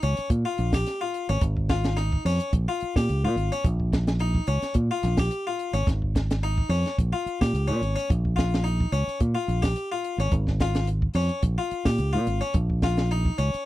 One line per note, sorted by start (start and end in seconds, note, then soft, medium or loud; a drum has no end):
0.02 0.16 C#2 medium
0.02 0.27 C#4 medium
0.02 closed hi-hat medium
0.17 closed hi-hat medium
0.30 0.43 A#2 medium
0.30 kick medium
0.30 closed hi-hat medium
0.45 0.70 F4 medium
0.58 0.83 A#1 medium
0.58 closed hi-hat soft
0.72 0.98 G4 medium
0.72 kick medium
0.72 snare medium
0.72 closed hi-hat medium
0.86 snare soft
0.86 closed hi-hat medium
1.01 1.26 F4 medium
1.14 closed hi-hat medium
1.29 1.40 G#1 medium
1.29 1.40 C#4 medium
1.29 closed hi-hat soft
1.41 2.16 G#1 medium
1.41 kick medium
1.41 closed hi-hat medium
1.57 kick medium
1.69 1.94 F4 medium
1.69 kick medium
1.69 snare medium
1.69 closed hi-hat soft
1.84 snare medium
1.84 closed hi-hat soft
1.97 2.22 D#4 medium
1.97 snare soft
1.97 closed hi-hat medium
2.12 kick medium
2.25 2.38 F2 medium
2.25 2.50 C#4 medium
2.25 open hi-hat medium
2.40 closed hi-hat soft
2.53 2.66 A#1 medium
2.53 kick medium
2.53 closed hi-hat medium
2.68 2.93 F4 medium
2.80 muted fingered electric bass stroke soft
2.80 closed hi-hat soft
2.96 3.07 A#2 medium
2.96 3.21 G4 medium
2.96 kick medium
2.96 snare medium
3.09 3.25 C#2 medium
3.09 closed hi-hat medium
3.24 3.35 A#2 medium
3.24 3.49 F4 medium
3.36 3.49 G#1 medium
3.36 closed hi-hat soft
3.52 3.63 C#4 medium
3.52 closed hi-hat soft
3.64 4.39 A#1 loud
3.64 kick medium
3.64 closed hi-hat medium
3.80 kick medium
3.92 kick medium
3.92 snare medium
3.92 closed hi-hat soft
4.07 snare medium
4.07 closed hi-hat soft
4.19 4.45 D#4 medium
4.19 closed hi-hat medium
4.35 kick medium
4.47 4.61 C#2 medium
4.47 4.73 C#4 medium
4.47 closed hi-hat soft
4.62 muted fingered electric bass stroke soft
4.62 snare soft
4.62 closed hi-hat soft
4.74 4.89 A#2 medium
4.74 kick medium
4.74 closed hi-hat medium
4.91 5.16 F4 medium
5.03 5.28 A#1 medium
5.03 snare soft
5.03 closed hi-hat soft
5.17 5.44 G4 medium
5.17 kick medium
5.17 snare medium
5.17 closed hi-hat medium
5.31 closed hi-hat medium
5.47 5.72 F4 medium
5.59 closed hi-hat medium
5.73 5.85 G#1 medium
5.73 5.85 C#4 medium
5.73 closed hi-hat soft
5.87 6.61 G#1 medium
5.87 kick medium
5.87 snare soft
5.87 closed hi-hat medium
6.02 kick medium
6.15 kick medium
6.15 snare medium
6.15 closed hi-hat medium
6.31 snare medium
6.31 closed hi-hat soft
6.43 6.68 D#4 medium
6.43 closed hi-hat medium
6.58 kick medium
6.69 6.83 F2 medium
6.69 6.95 C#4 medium
6.69 open hi-hat medium
6.86 snare soft
6.86 closed hi-hat medium
6.98 7.12 A#1 medium
6.98 kick medium
6.98 closed hi-hat medium
7.13 7.38 F4 medium
7.26 muted fingered electric bass stroke soft
7.26 closed hi-hat soft
7.41 7.53 A#2 medium
7.41 7.66 G4 medium
7.41 kick medium
7.41 snare medium
7.53 7.70 C#2 medium
7.53 closed hi-hat medium
7.68 7.80 A#2 medium
7.68 7.93 C#4 medium
7.81 7.95 G#1 medium
7.81 closed hi-hat soft
7.96 8.08 C#4 medium
7.96 closed hi-hat soft
8.10 8.84 A#1 medium
8.10 kick medium
8.10 closed hi-hat medium
8.25 kick medium
8.36 8.62 F4 medium
8.36 kick medium
8.36 snare medium
8.36 closed hi-hat soft
8.54 snare medium
8.54 closed hi-hat soft
8.64 8.90 D#4 medium
8.64 closed hi-hat medium
8.80 kick medium
8.92 9.06 C#2 medium
8.92 9.18 C#4 medium
8.92 closed hi-hat soft
9.09 closed hi-hat soft
9.20 9.34 A#2 medium
9.20 kick medium
9.20 closed hi-hat medium
9.35 9.60 F4 medium
9.48 9.73 A#1 medium
9.48 closed hi-hat soft
9.62 9.88 G4 medium
9.62 kick medium
9.62 snare medium
9.62 closed hi-hat soft
9.76 closed hi-hat medium
9.92 10.17 F4 medium
10.04 closed hi-hat medium
10.18 10.30 G#1 medium
10.18 10.31 C#4 medium
10.18 closed hi-hat soft
10.31 11.07 G#1 medium
10.31 kick medium
10.31 closed hi-hat medium
10.47 kick medium
10.47 snare soft
10.60 10.86 F4 medium
10.60 kick medium
10.60 snare medium
10.60 closed hi-hat soft
10.75 snare medium
10.75 closed hi-hat medium
10.87 closed hi-hat medium
11.02 kick medium
11.14 11.29 F2 medium
11.14 11.41 C#4 medium
11.14 open hi-hat medium
11.29 closed hi-hat soft
11.42 11.57 A#1 medium
11.42 kick medium
11.42 closed hi-hat medium
11.58 11.83 F4 medium
11.71 muted fingered electric bass stroke soft
11.71 closed hi-hat soft
11.85 11.97 A#2 medium
11.85 12.11 G4 medium
11.85 kick medium
11.85 snare medium
11.98 12.16 C#2 medium
11.98 closed hi-hat medium
12.13 12.26 A#2 medium
12.13 12.38 F4 medium
12.27 12.40 G#1 medium
12.27 closed hi-hat soft
12.41 12.53 C#4 medium
12.41 closed hi-hat soft
12.54 13.29 A#1 medium
12.54 kick medium
12.54 closed hi-hat medium
12.70 kick medium
12.82 13.08 F4 medium
12.82 kick medium
12.82 snare medium
12.82 closed hi-hat soft
12.97 snare medium
12.97 closed hi-hat soft
13.11 13.36 D#4 medium
13.11 closed hi-hat medium
13.25 kick medium
13.38 13.52 C#2 medium
13.38 13.63 C#4 medium
13.38 closed hi-hat soft
13.54 muted fingered electric bass stroke soft
13.54 closed hi-hat soft